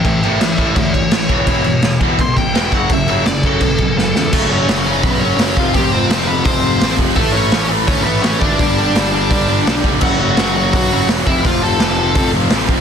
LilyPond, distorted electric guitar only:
\new Staff \with { instrumentName = "Distorted electric guitar" } { \clef bass \time 4/4 \key fis \minor \tempo 4 = 168 <a, e>8 <a, e a>8 <a, e>8 <a, e a>8 <a, e>8 <a, e>8 <a, e>8 <e, b, e>8 | <e, b, e>8 <e, b,>8 <e, b,>8 <e, b, e>8 <e, b,>8 <e, b,>8 <e, b, e>8 <fis, cis fis>8 | <fis, cis>8 <fis, cis fis>8 <fis, cis>8 <fis, cis fis>8 <fis, cis>8 <fis, cis>8 <fis, cis>8 <fis, cis>8 | <fis, cis fis>8 <fis, cis fis>8 <fis, cis fis>8 <fis, cis fis>8 <fis, cis fis>8 <fis, cis fis>8 <fis, cis fis>8 <f, c f>8 |
<f, c f>8 <f, c f>8 <f, c f>8 <f, c f>8 <f, c f>8 <f, c f>8 <f, c f>8 <f, c f>8 | <a, e a>8 <a, e a>8 <a, e a>8 <a, e a>8 <a, e a>8 <a, e a>8 <a, e a>8 <a, e a>8 | <g, d g>8 <g, d g>8 <g, d g>8 <g, d g>8 <g, d g>8 <g, d g>8 <g, d g>8 <g, d g>8 | <fis, cis fis>8 <fis, cis fis>8 <fis, cis fis>8 <fis, cis fis>8 <fis, cis fis>8 <fis, cis fis>8 <fis, cis fis>8 <f, c f>8 |
<f, c f>8 <f, c f>8 <f, c f>8 <f, c f>8 <f, c f>8 <f, c f>8 <f, c f>8 <f, c f>8 | }